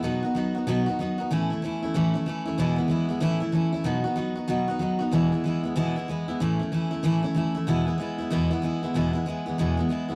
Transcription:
X:1
M:4/4
L:1/8
Q:"Swing" 1/4=189
K:E
V:1 name="Steel-string acoustic guitar"
[B,,F,B,DF] [B,DF] [F,B,DF] [B,DF] [B,,F,B,DF] [B,DF] [F,B,DF] [B,DF] | [A,,E,A,CE] [A,CE] [E,A,CE] [A,CE] [A,,E,A,CE] [A,CE] [E,A,CE] [A,CE] | [E,,B,,E,G,B,E] [E,G,B,E] [E,G,B,E] [E,G,B,E] [A,,E,A,CE] [A,CE] [E,A,CE] [A,CE] | [B,,F,B,DF] [B,DF] [F,B,DF] [B,DF] [B,,F,B,DF] [B,DF] [F,B,DF] [B,DF] |
[E,,B,,E,G,B,E] [E,G,B,E] [E,G,B,E] [E,G,B,E] [E,,B,,E,G,B,E] [E,G,B,E] [E,G,B,E] [E,G,B,E] | [A,,E,A,CE] [A,CE] [E,A,CE] [A,CE] [A,,E,A,CE] [A,CE] [E,A,CE] [A,CE] | [E,,B,,E,G,B,E] [E,G,B,E] [E,G,B,E] [E,G,B,E] [E,,B,,E,G,B,E] [E,G,B,E] [E,G,B,E] [E,G,B,E] | [E,,B,,E,G,B,E] [E,G,B,E] [E,G,B,E] [E,G,B,E] [E,,B,,E,G,B,E] [E,G,B,E] [E,G,B,E] [E,G,B,E] |]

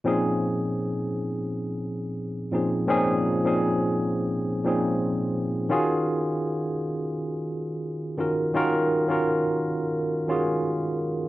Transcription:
X:1
M:4/4
L:1/16
Q:"Swing 16ths" 1/4=85
K:Bbm
V:1 name="Tine electric piano"
[B,,F,CDEA]4- [B,,F,CDEA] z8 z [B,,F,CDEA] z | [B,,F,CDEA]2 z [B,,F,CDEA]4- [B,,F,CDEA] z2 [B,,F,CDEA]4 z2 | [E,DFGA]4- [E,DFGA] z8 z [E,DFGB] z | [E,DFGB]2 z [E,DFGB]4- [E,DFGB] z2 [E,DFGA]4 z2 |]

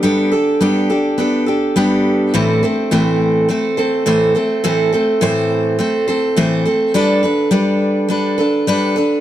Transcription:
X:1
M:4/4
L:1/8
Q:"Swing 16ths" 1/4=104
K:Ador
V:1 name="Steel-string acoustic guitar"
[G,B,DGA] [DGA] [G,B,DGA] [DGA] [B,DGA] [DGA] [G,B,DGA]2 | [A,,E,A,CAc] [A,CAc] [A,,E,A,CAc]2 [A,CAc] [A,CAc] [A,,E,A,CAc] [A,CAc] | [A,,E,A,CAc] [A,CAc] [A,,E,A,CAc]2 [A,CAc] [A,CAc] [A,,E,A,CAc] [A,CAc] | [G,DAB] [DAB] [G,DAB]2 [G,DAB] [DAB] [G,DAB] [DAB] |]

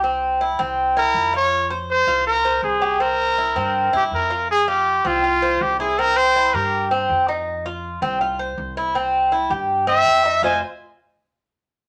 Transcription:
X:1
M:4/4
L:1/8
Q:1/4=162
K:Fm
V:1 name="Trumpet"
z4 z B2 d- | d z c2 B2 A2 | B4- B G B2 | A G2 F3 G A |
B c2 B2 z3 | z8 | z4 z =e3 | a z6 z |]
V:2 name="Cuban tres"
C2 =E C2 E2 F- | F c2 F2 c2 G | C2 =E C2 E2 F | z F2 C F c2 =E |
C2 =E G2 C2 _E- | E F2 C F c2 =E | C2 =E G2 C2 _E | [Fce] z6 z |]
V:3 name="Upright bass" clef=bass
C,,3 C,,3 F,,2- | F,,3 C,,3 C,,2- | C,,3 G,,2 G,, F,,2- | F,,3 C,,3 C,,2- |
C,,3 G,,3 F,,2- | F,,3 C,,3 C,,2- | C,,3 G,,3 F,,2 | F,,, z6 z |]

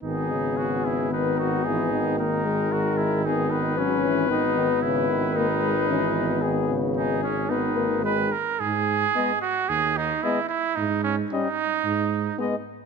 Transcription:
X:1
M:4/4
L:1/8
Q:1/4=112
K:G#m
V:1 name="Trumpet"
G4 B F G2 | A4 G B3- | B2 B6 | G z G2 B2 B z |
z2 d2 z2 d2 | z2 d2 z2 d2 |]
V:2 name="Trumpet"
D2 F E D4 | D2 F E D2 C2 | D2 E2 D4- | D z D C D2 B A |
G3 F G D E E | D C D4 z2 |]
V:3 name="French horn"
B,8 | A, G,3 B,2 C2 | B,4 A, G, C B,- | B,3 z B, A, G, z |
z2 B,2 z2 B,2 | z2 C2 z2 B,2 |]
V:4 name="Trombone" clef=bass
D, C,3 D,2 E, D,- | D,2 D,4 F, E, | D, D, C, D,3 E,2 | D, C,2 z D,2 D, z |
z2 G,2 z2 G,2 | z2 =G,2 z2 ^G,2 |]
V:5 name="Tuba" clef=bass
G,,,8- | G,,,8 | G,,,8- | G,,,6- G,,, z |
G,,2 z2 D,,2 z2 | G,,2 z2 G,,2 z2 |]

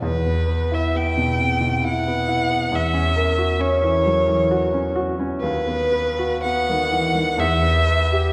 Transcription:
X:1
M:3/4
L:1/16
Q:1/4=66
K:Em
V:1 name="Violin"
B3 e g4 f4 | e4 ^c6 z2 | B4 f4 e4 |]
V:2 name="Grand piano"
E,, B, B E B, B,, C, B,, E B, E B, | E,, ^C ^A F C E, F, E, F C F C | ^D,, B, B F B, ^D, E, D, E,, B, B G |]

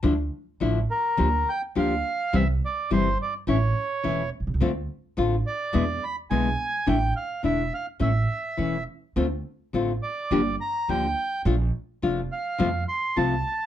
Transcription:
X:1
M:4/4
L:1/16
Q:1/4=105
K:Dm
V:1 name="Bandoneon"
z6 B4 g2 f4 | e2 d2 c2 d2 ^c6 z2 | z6 d4 =b2 ^g4 | g2 f2 e2 f2 e6 z2 |
z6 d4 b2 g4 | z6 f4 c'2 a4 |]
V:2 name="Nylon-string guitar"
[D,F,A,DE]2 z2 [D,F,A,DE]2 z2 [D,F,B,DG]2 z2 [D,F,B,DG]2 z2 | [C,E,G,CE]2 z2 [C,E,G,CE]2 z2 [E,A,^CE]2 z2 [E,A,CE]2 z2 | [D,A,CF]2 z2 [D,A,CF]2 z2 [=B,,D,^G,=B,E]2 z2 [B,,D,G,B,E]2 z2 | [D,A,DE]2 z2 [D,A,DE]2 z2 [E,A,^CE]2 z2 [E,A,CE]2 z2 |
[D,A,CF]2 z2 [D,A,CF]2 z2 [D,F,B,DG]2 z2 [D,F,B,DG]2 z2 | [F,A,DF]2 z2 [F,A,DF]2 z2 [C,F,A,CF]2 z2 [C,F,A,CF]2 z2 |]
V:3 name="Upright bass" clef=bass
D,,3/2 z2 z/2 A,,,3/2 z2 z/2 D,,3/2 z2 z/2 D,,3/2 z2 z/2 | C,,3/2 z2 z/2 G,,,3/2 z2 z/2 A,,,3/2 z2 z/2 E,,,3/2 z =B,,,/2 C,,/2 ^C,,/2 | D,,3/2 z2 z/2 A,,,3/2 z2 z/2 E,,3/2 z2 z/2 =B,,,3/2 z2 z/2 | A,,,3/2 z2 z/2 E,,,3/2 z2 z/2 A,,,3/2 z2 z/2 E,,,3/2 z2 z/2 |
D,,3/2 z2 z/2 A,,,3/2 z2 z/2 G,,,3/2 z2 z/2 D,,3/2 z2 z/2 | B,,,3/2 z2 z/2 F,,,3/2 z2 z/2 F,,3/2 z2 z/2 C,,3/2 z2 z/2 |]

